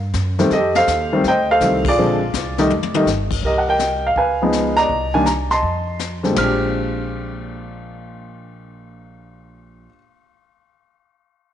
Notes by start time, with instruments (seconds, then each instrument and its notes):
Already playing: upright bass G2
0.14 upright bass F#2, kick, snare, hi-hat pedal
0.39 upright piano D#3 G3 A3 C4, snare
0.50 upright bass F2, upright piano A4 D#5, brush sweep, kick, snare
0.55 upright piano G4
0.75 upright piano A4 C5 F5, snare
0.87 upright bass D#2, kick, snare, hi-hat pedal
1.13 upright piano D#3 G3 A3 C4
1.24 upright bass D2, brush sweep, kick, snare
1.28 upright piano C5 D#5 G5
1.51 upright piano A4 C5 F5
1.60 upright bass C2, upright piano D#3 G3 A3 C4, kick, snare, hi-hat pedal
1.85 upright piano F4 G#4 D5, kick, crash
1.97 upright bass A#1, upright piano D3 F3 G#3 C4, brush sweep
2.34 upright bass C2, kick, snare, hi-hat pedal
2.58 upright piano D#3 G3 A3 D#4, snare
2.70 upright bass F1, high tom
2.83 high tom
2.94 upright piano D#3 G3 A3 D#4, high tom
3.06 upright bass G1, snare, hi-hat pedal
3.31 kick, crash
3.43 upright bass C2, upright piano G4 A#4 D#5, brush sweep, kick
3.58 upright piano F#5
3.68 upright piano A#4 D#5 G5
3.79 snare, hi-hat pedal
4.07 upright piano F5
4.16 upright bass C#2, upright piano B4 F5 G#5, brush sweep, kick
4.42 upright piano F3 G#3 B3 D#4
4.53 snare, hi-hat pedal
4.77 upright piano D5 D#5 A#5, snare
4.89 upright bass C2, brush sweep, kick
5.14 upright piano D#3 G3 A#3 D4 G#5
5.26 upright piano A#5, snare, hi-hat pedal
5.50 upright piano D#5 A5 C6, snare
5.63 upright bass F2, brush sweep, kick
5.99 snare, hi-hat pedal
6.23 upright piano D3 G3 G#3 C4, snare
6.31 upright piano A#2 G#3
6.36 upright bass A#1, upright piano C4 F6, snare, ride bell
6.41 upright piano D4 G4